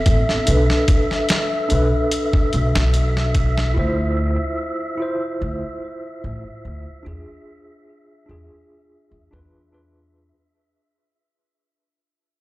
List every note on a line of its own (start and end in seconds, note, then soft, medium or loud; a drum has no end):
0.00 0.42 B3 medium
0.00 0.43 C4 medium
0.00 0.44 A4 medium
0.00 10.36 E5 medium
0.06 0.25 A1 medium
0.06 kick medium
0.06 closed hi-hat medium
0.29 snare soft
0.46 0.67 B1 medium
0.46 1.65 D4 medium
0.46 1.66 A4 medium
0.46 closed hi-hat medium
0.50 1.67 B4 medium
0.70 snare soft
0.88 kick medium
0.88 closed hi-hat medium
1.11 snare soft
1.29 snare loud
1.29 closed hi-hat medium
1.69 1.90 B1 medium
1.69 3.70 D4 medium
1.69 3.72 A4 medium
1.69 closed hi-hat medium
1.73 3.73 B4 medium
2.11 closed hi-hat medium
2.33 kick medium
2.53 2.73 B1 medium
2.53 closed hi-hat medium
2.75 3.73 B1 medium
2.75 snare loud
2.94 closed hi-hat medium
3.17 snare soft
3.35 kick medium
3.35 closed hi-hat medium
3.58 snare soft
3.74 4.35 D2 medium
3.74 4.94 E4 medium
3.74 4.95 F4 medium
3.79 4.96 C5 medium
4.97 6.99 E4 medium
4.97 7.00 F4 medium
5.02 7.01 C5 medium
5.42 5.60 D2 medium
6.24 6.42 A1 medium
6.65 6.83 D2 medium
7.03 7.25 E2 medium
7.03 8.23 D4 medium
7.03 8.24 F4 medium
7.07 8.25 G#4 medium
8.26 8.48 E2 medium
8.26 9.27 D4 medium
8.26 9.28 F4 medium
8.31 9.29 G#4 medium
9.11 9.30 E2 medium
9.31 10.30 E2 medium
9.31 9.67 D4 medium
9.31 9.68 F4 medium
9.31 9.69 B4 medium
9.72 10.28 D4 medium
9.72 10.29 F4 medium
9.72 10.30 B4 medium